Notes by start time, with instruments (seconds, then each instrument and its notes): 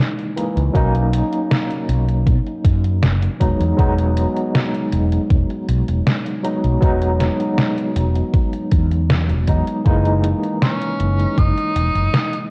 Already playing: tine electric piano E3 G#3 A#3 D#4
0.19 closed hi-hat
0.36 tine electric piano E3 G#3 A#3 D#4, closed hi-hat
0.56 fretless electric bass C#2, closed hi-hat
0.73 fretless electric bass B1, tine electric piano F#3 A#3 C#4 D#4, kick, closed hi-hat
0.95 closed hi-hat
1.13 closed hi-hat
1.33 closed hi-hat
1.51 snare, closed hi-hat
1.71 closed hi-hat
1.89 fretless electric bass B1, closed hi-hat
2.09 closed hi-hat
2.27 fretless electric bass B2, kick, closed hi-hat
2.47 closed hi-hat
2.65 fretless electric bass F#2, kick, closed hi-hat
2.84 closed hi-hat
3.02 fretless electric bass F#1, snare, closed hi-hat
3.23 closed hi-hat
3.40 fretless electric bass E1, tine electric piano F#3 G#3 B3 D#4, kick, closed hi-hat
3.60 fretless electric bass E2, closed hi-hat
3.77 fretless electric bass E1, tine electric piano F#3 G#3 B3 D#4, kick, closed hi-hat
3.98 closed hi-hat
4.17 closed hi-hat
4.37 closed hi-hat
4.55 snare, closed hi-hat
4.74 closed hi-hat
4.92 fretless electric bass E1, closed hi-hat
5.12 closed hi-hat
5.30 fretless electric bass E1, kick, closed hi-hat
5.50 closed hi-hat
5.69 fretless electric bass B1, closed hi-hat
5.88 fretless electric bass E1, closed hi-hat
6.07 snare, closed hi-hat
6.26 closed hi-hat
6.43 tine electric piano F#3 G#3 B3 D#4, closed hi-hat
6.64 fretless electric bass B1, closed hi-hat
6.81 fretless electric bass E1, tine electric piano F#3 G#3 B3 D#4, kick, closed hi-hat
7.02 closed hi-hat
7.20 snare, closed hi-hat
7.40 closed hi-hat
7.58 snare, closed hi-hat
7.78 closed hi-hat
7.96 fretless electric bass E1, closed hi-hat
8.16 closed hi-hat
8.34 kick, closed hi-hat
8.53 closed hi-hat
8.72 fretless electric bass E2, kick, closed hi-hat
8.91 closed hi-hat
9.10 snare, closed hi-hat
9.29 fretless electric bass E1, closed hi-hat
9.47 fretless electric bass E2, tine electric piano F#3 G#3 B3 D#4, kick, closed hi-hat
9.67 closed hi-hat
9.84 fretless electric bass F#1, tine electric piano E3 G#3 A#3 D#4, kick, closed hi-hat
10.05 closed hi-hat
10.24 closed hi-hat
10.43 closed hi-hat
10.62 tenor saxophone C#4, snare, closed hi-hat
10.81 closed hi-hat
11.00 fretless electric bass F#1, closed hi-hat
11.19 closed hi-hat
11.37 fretless electric bass F#1, tenor saxophone D#4, kick, closed hi-hat
11.57 closed hi-hat
11.75 fretless electric bass E1, closed hi-hat
11.95 fretless electric bass F#1, closed hi-hat
12.14 snare, closed hi-hat
12.33 closed hi-hat